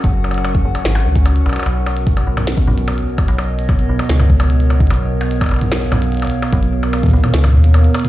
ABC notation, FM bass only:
X:1
M:4/4
L:1/8
Q:1/4=148
K:Blyd
V:1 name="FM bass" clef=bass
F,,,3 F,,, G,,, C,,2 B,,, | B,,,3 B,,,2 B,,,2 z | B,,,3 B,,, C,,4 | B,,,3 B,,,2 B,,,2 z |
B,,,3 B,,, C,, D,,2 z |]